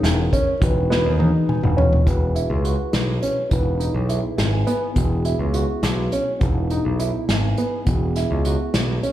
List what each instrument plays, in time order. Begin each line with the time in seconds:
Already playing: tine electric piano C#4 E4 G#4 A#4, grand piano D#4
0.03 picked electric bass E1, snare, closed hi-hat
0.33 grand piano C#4, kick, closed hi-hat
0.61 picked electric bass E1, tine electric piano D#4 F#4 G#4 B4, kick, closed hi-hat
0.90 grand piano B3, snare
1.05 picked electric bass D#2
1.19 grand piano D#4, high tom
1.49 tine electric piano G#5, mid tom
1.63 picked electric bass E1, mid tom
1.77 grand piano C#4, tine electric piano C#5, floor tom
1.93 floor tom
2.05 picked electric bass E1, tine electric piano E4 F#4 G#4 B4, kick, closed hi-hat
2.35 grand piano E4, closed hi-hat
2.50 picked electric bass C#2
2.64 grand piano F#4, closed hi-hat
2.93 picked electric bass B1, snare, closed hi-hat
3.22 grand piano C#4, closed hi-hat
3.49 picked electric bass E1, tine electric piano D#4 E4 G#4 B4, kick, closed hi-hat
3.80 grand piano D#4, closed hi-hat
3.95 picked electric bass B1
4.09 grand piano E4, closed hi-hat
4.38 picked electric bass G#1, tine electric piano E5, snare, closed hi-hat
4.53 tine electric piano G#5
4.67 grand piano B3, closed hi-hat
4.94 picked electric bass E1, tine electric piano B3 E4 F#4 G#4, kick, closed hi-hat
5.25 grand piano E4, closed hi-hat
5.39 picked electric bass C#2
5.54 grand piano F#4, closed hi-hat
5.83 picked electric bass B1, snare, closed hi-hat
6.12 grand piano C#4, closed hi-hat
6.39 picked electric bass E1, tine electric piano B3 D#4 E4, kick, closed hi-hat
6.43 tine electric piano G#4
6.70 grand piano D#4, closed hi-hat
6.85 picked electric bass B1
6.99 grand piano E4, closed hi-hat
7.29 picked electric bass G#1, tine electric piano G#5, snare, closed hi-hat
7.57 grand piano B3, closed hi-hat
7.85 picked electric bass E1, tine electric piano B3 E4 F#4 G#4, kick, closed hi-hat
8.16 grand piano E4, snare, closed hi-hat
8.31 picked electric bass C#2
8.45 grand piano F#4, closed hi-hat
8.74 picked electric bass B1, snare, closed hi-hat
9.03 grand piano C#4, closed hi-hat